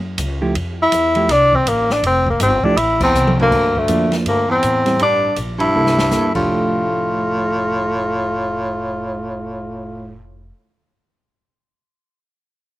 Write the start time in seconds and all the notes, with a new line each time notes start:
Already playing: F#2
0.18 C#2, hi-hat pedal, ride
0.41 F3 A3 E4 G4
0.55 F2, ride
0.82 E4
0.92 E2, hi-hat pedal, ride
1.15 F3 A3 E4 G4, ride
1.28 C2 D4, snare, ride
1.53 C4, kick
1.66 A1 A#3, hi-hat pedal, ride
1.90 D4, snare
2.03 F1 C4, ride
2.27 A#3, kick
2.40 G1 C4, hi-hat pedal, ride
2.63 F3 A3 D4 E4 G4, muted upright bass stroke, kick
2.76 A1 E4, ride
3.01 E2 C4, kick, crash
3.13 C2, hi-hat pedal
3.27 mid tom
3.39 D2 A#3, floor tom
3.51 G2, kick, crash
3.75 D2 A3, kick
3.88 F2 F3 A#3 D4, hi-hat pedal, ride
4.12 snare, ride
4.26 D2 G2 A#3, ride
4.48 E2 C4
4.63 A2, hi-hat pedal, ride
4.85 G3 C4 E4, snare, ride
4.99 A1 G2 D4, ride
5.36 A#1, hi-hat pedal, ride
5.58 G2 E4, ride
5.74 C2 A#3 E4 A4
5.86 snare
5.98 snare
6.11 D2 A#3 E4 A4, snare, hi-hat pedal
6.34 F1 A2 F3 A3 D4 F4 G4, kick, crash